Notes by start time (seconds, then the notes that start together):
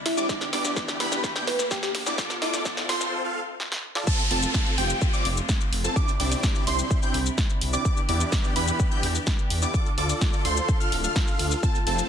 Already playing: C2 C3 D4 E4, riser
0.06 E4, snare, open hi-hat
0.17 C4 D4 E4 G4 D5 D6, shaker
0.29 E2 B2 B3 D4 E4 G4 D5, kick, snare, shaker
0.41 snare, shaker
0.53 B3 D4 E4 G4 D5 D6, snare, open hi-hat
0.65 snare, shaker
0.76 kick, snare, shaker
0.88 snare, shaker
1.00 B3 D4 E4 G4 B4 B5, snare, open hi-hat
1.12 snare, shaker
1.24 kick, snare, shaker
1.35 B3 D4 E4 G4 G5 G6, snare, shaker
1.47 B4, snare, open hi-hat
1.59 snare, shaker
1.71 G4, kick, snare, shaker
1.83 G4, snare, shaker
1.95 snare, open hi-hat
2.06 B3 D4 E4 G4 D5 D6, snare, shaker
2.18 D2 D3 F4 A4 D5 D6, kick, snare, shaker
2.30 snare, shaker
2.42 E4 F4 A4 D5 D6, snare, open hi-hat
2.54 snare, open hi-hat, shaker
2.65 kick, snare, shaker
2.77 snare, shaker
2.89 F4 A4 C5 C6, snare, open hi-hat
3.01 snare, shaker
3.24 F4 A4 F5
3.60 snare
3.72 snare
3.95 F4 A4 D5, snare
4.07 A3 C4 F4 A4 A5, kick, crash, downlifter, shaker
4.19 shaker
4.31 F1 C4 F4 A4 A5, open hi-hat
4.43 shaker
4.54 kick, snare, shaker
4.66 shaker
4.78 F1 C4 F4 G4 G5, open hi-hat
4.90 shaker
5.02 kick, shaker
5.13 C4 F4 D5 D6, shaker
5.25 F1, open hi-hat
5.37 shaker
5.49 kick, snare, shaker
5.61 shaker
5.73 F1, open hi-hat
5.84 C4 F4 A4 A5, shaker
5.96 C3 C4 D4 E4 G4 D5 D6, kick, shaker
6.08 shaker
6.20 C2 C4 D4 E4 G4 D5 D6, open hi-hat
6.32 open hi-hat, shaker
6.43 kick, snare, shaker
6.55 shaker
6.67 C2 C4 D4 E4 G4 C5 C6, open hi-hat
6.79 shaker
6.91 kick, shaker
7.02 C4 D4 E4 G4 G5 G6, shaker
7.14 C2, open hi-hat
7.26 shaker
7.38 kick, snare, shaker
7.50 shaker
7.61 C2, open hi-hat
7.73 C4 D4 E4 G4 D5 D6, shaker
7.85 E3 B3 D4 E4 G4 D5 D6, kick, shaker
7.97 shaker
8.09 E2 B3 D4 E4 G4 D5 D6, open hi-hat
8.21 shaker
8.32 kick, snare, shaker
8.44 shaker
8.56 E2 B3 D4 E4 G4 B4 B5, open hi-hat
8.68 shaker
8.80 kick, shaker
8.91 B3 D4 E4 G4 G5 G6, shaker
9.03 E2, open hi-hat
9.15 shaker
9.27 kick, snare, shaker
9.39 shaker
9.50 E2, open hi-hat
9.62 B3 D4 E4 G4 D5 D6, shaker
9.74 D3 F4 A4 D5 D6, kick, shaker
9.86 shaker
9.98 D2 F4 A4 D5 D6, open hi-hat
10.10 open hi-hat, shaker
10.21 kick, snare, shaker
10.33 shaker
10.45 D2 F4 A4 C5 C6, open hi-hat
10.57 shaker
10.69 kick, shaker
10.80 F4 A4 F5 F6, shaker
10.92 D1, open hi-hat
11.04 F4 A4 F5 F6, shaker
11.16 kick, snare, shaker
11.28 shaker
11.39 D2, open hi-hat
11.51 shaker
11.63 A3 C4 F4 A4 A5, kick, shaker
11.75 shaker
11.87 F1 C4 F4 A4 A5, open hi-hat
11.99 shaker